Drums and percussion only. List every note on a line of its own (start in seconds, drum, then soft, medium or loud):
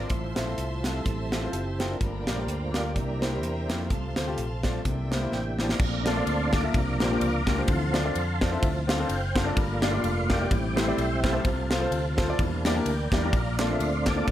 0.10 kick medium
0.10 closed hi-hat medium
0.36 snare loud
0.36 closed hi-hat medium
0.58 closed hi-hat medium
0.84 snare medium
0.84 closed hi-hat medium
1.06 kick medium
1.06 closed hi-hat medium
1.32 snare medium
1.32 closed hi-hat medium
1.53 closed hi-hat medium
1.80 snare medium
1.80 closed hi-hat medium
2.01 kick medium
2.01 closed hi-hat medium
2.27 snare loud
2.27 closed hi-hat medium
2.48 closed hi-hat medium
2.74 snare medium
2.74 closed hi-hat medium
2.96 kick medium
2.96 closed hi-hat medium
3.22 snare medium
3.22 closed hi-hat medium
3.43 closed hi-hat medium
3.70 snare loud
3.70 closed hi-hat medium
3.90 kick medium
3.90 closed hi-hat medium
4.16 snare loud
4.16 closed hi-hat medium
4.38 closed hi-hat medium
4.63 kick medium
4.63 snare medium
4.63 closed hi-hat medium
4.85 kick medium
4.85 closed hi-hat medium
5.12 snare medium
5.12 closed hi-hat medium
5.32 snare soft
5.59 snare medium
5.69 snare medium
5.79 kick loud
5.79 crash loud
6.06 snare loud
6.06 ride medium
6.27 ride medium
6.53 kick loud
6.53 snare loud
6.53 ride medium
6.74 kick loud
6.74 ride medium
7.00 snare loud
7.00 ride medium
7.21 ride medium
7.47 kick medium
7.47 snare loud
7.47 ride medium
7.68 kick loud
7.68 ride medium
7.94 snare loud
7.94 ride medium
8.15 ride medium
8.41 kick medium
8.41 snare loud
8.41 ride medium
8.63 kick loud
8.63 ride medium
8.89 snare loud
8.89 ride medium
9.09 ride medium
9.36 kick medium
9.36 snare loud
9.36 ride medium
9.57 kick loud
9.57 ride medium
9.82 snare loud
9.82 ride medium
10.04 ride medium
10.30 kick medium
10.30 snare loud
10.30 ride medium
10.51 kick loud
10.51 ride medium
10.77 snare loud
10.77 ride medium
10.98 ride medium
11.24 kick medium
11.24 snare loud
11.24 ride medium
11.45 kick loud
11.45 ride medium
11.71 snare loud
11.71 ride medium
11.92 ride medium
12.18 kick loud
12.18 snare loud
12.18 ride medium
12.39 kick loud
12.39 ride medium
12.65 snare loud
12.65 ride medium
12.86 ride medium
13.12 kick medium
13.12 snare loud
13.12 ride medium
13.33 kick loud
13.33 ride medium
13.59 snare loud
13.59 clap loud
13.59 ride medium
13.80 ride medium
14.06 kick medium
14.06 snare loud
14.06 clap medium
14.06 ride medium
14.28 kick loud
14.28 ride medium